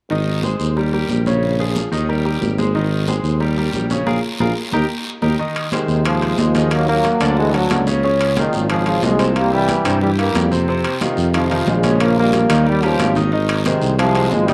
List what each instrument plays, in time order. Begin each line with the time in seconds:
0.10 tuba G#1, grand piano D#3 D#4 D#5, high conga, long guiro
0.27 high conga
0.43 grand piano G#3 G#4 C5, high conga, short guiro
0.59 tuba D#2, short guiro
0.77 grand piano G3 G4 A#4, high conga, long guiro
0.93 grand piano G3 G4 A#4, high conga
1.09 tuba A#1, high conga, short guiro
1.26 grand piano C#3 C#4 C#5, high conga, short guiro
1.43 high conga, long guiro
1.59 grand piano F3 F4 G#4, high conga
1.76 high conga, short guiro
1.92 tuba D#2, grand piano D#3 D#4 D#5, high conga, short guiro
2.09 grand piano G3 G4 A#4, high conga, long guiro
2.25 grand piano G3 G4 A#4, high conga
2.41 tuba G#1, high conga, short guiro
2.58 grand piano G#3 G#4 C5, high conga, short guiro
2.75 grand piano D#3 D#4 D#5, high conga, long guiro
2.91 high conga
3.08 grand piano G#3 G#4 C5, high conga, short guiro
3.23 tuba D#2, short guiro
3.40 grand piano G3 G4 A#4, high conga, long guiro
3.57 grand piano G3 G4 A#4, high conga
3.73 tuba A#1, high conga, short guiro
3.90 grand piano C#3 C#4 C#5, high conga, short guiro
4.06 tuba A#1, grand piano F4 G#4 A#4, high conga, long guiro
4.39 tuba A#1, grand piano F4 G#4 A#4, high conga, long guiro
4.72 tuba D#2, grand piano D#4 G4 A#4, high conga, long guiro
5.22 tuba D#2, grand piano D#4 G4 A#4, high conga, long guiro
5.38 grand piano D#3 D#4 D#5, high conga, long guiro
5.56 high conga, high timbale
5.72 trombone section C3 D#3, grand piano G#3 G#4 C5, high conga, high timbale, low timbale, short guiro
5.88 tuba D#2, short guiro
6.05 trombone section C3 F3, grand piano G#3 G#4 C5, high timbale, long guiro
6.22 grand piano G#3 G#4 C5, high conga, high timbale
6.38 tuba D#2, trombone section F3 G#3, high conga, low timbale, short guiro
6.55 grand piano D#3 D#4 D#5, high conga, high timbale, short guiro
6.71 trombone section F#3 A#3, high timbale, long guiro
6.88 grand piano F#3 F#4 A#4, trombone section F#3 A#3, high conga
7.04 high conga, high timbale, low timbale, short guiro
7.20 tuba D2, grand piano D3 D4 D5, high conga, high timbale, short guiro
7.37 trombone section E3 G#3, grand piano F#3 F#4 A4, high conga, long guiro
7.54 trombone section D3 F#3, grand piano F#3 F#4 A4, high conga, high timbale
7.70 tuba C#2, high conga, high timbale, low timbale, short guiro
7.87 grand piano C#3 C#4 C#5, high conga, short guiro
8.03 grand piano C#3 C#4 C#5, high conga, long guiro
8.21 high timbale
8.37 trombone section A#2 D#3, grand piano F3 F4 G#4, high conga, high timbale, low timbale, short guiro
8.53 tuba G#1, short guiro
8.70 trombone section C#3 F3, grand piano F3 F4 G#4, high conga, high timbale, long guiro
8.86 grand piano F3 F4 G#4, high conga, high timbale
9.03 tuba C2, trombone section F3 G#3, high conga, low timbale, short guiro
9.19 grand piano C3 C4 C5, high conga, high timbale, short guiro
9.36 trombone section G3 A#3, high conga, high timbale, long guiro
9.52 grand piano E3 E4 G4, trombone section E3 G3, high conga
9.69 high conga, high timbale, low timbale, short guiro
9.85 tuba G2, grand piano C3 C4 C5, high timbale, short guiro
10.01 grand piano E3 E4 G4, trombone section E3 G3, high conga, long guiro
10.18 grand piano E3 E4 G4, trombone section G3 A#3, high conga, high timbale
10.35 tuba F2, high conga, high timbale, low timbale, short guiro
10.51 grand piano C3 C4 C5, high conga, short guiro
10.68 grand piano C3 C4 C5, high conga, long guiro
10.85 high conga, high timbale
11.01 trombone section C3 D#3, grand piano D#3 D#4 F4, high conga, high timbale, low timbale, short guiro
11.17 tuba F2, short guiro
11.34 trombone section C3 F3, grand piano D#3 D#4 F4, high conga, high timbale, long guiro
11.51 grand piano D#3 D#4 F4, high conga, high timbale
11.67 tuba A#1, trombone section F3 G#3, high conga, low timbale, short guiro
11.83 grand piano C#3 C#4 C#5, high conga, high timbale, short guiro
12.00 trombone section F3 A#3, high timbale, long guiro
12.17 grand piano F3 F4 A#4, trombone section G3 A#3, high conga
12.33 high conga, high timbale, low timbale, short guiro
12.49 tuba D#2, grand piano D#3 D#4 D#5, high conga, high timbale, short guiro
12.66 trombone section D#3 G3, grand piano G3 G4 A#4, high conga, long guiro
12.83 trombone section C#3 F3, grand piano G3 G4 A#4, high conga, high timbale
12.99 tuba G#1, high conga, high timbale, low timbale, short guiro
13.15 grand piano D#3 D#4 D#5, high conga, short guiro
13.32 grand piano D#3 D#4 D#5, high conga, long guiro
13.49 high conga, high timbale
13.65 trombone section C3 D#3, grand piano G#3 G#4 C5, high conga, high timbale, low timbale, short guiro
13.81 tuba C2, short guiro
13.98 trombone section C3 F3, grand piano G#3 G#4 C5, high conga, high timbale, long guiro
14.15 grand piano G#3 G#4 C5, high conga, high timbale
14.31 tuba G#1, trombone section F3 G#3, high conga, low timbale, short guiro
14.48 grand piano D#3 D#4 D#5, trombone section D#3 G3, high conga, high timbale, short guiro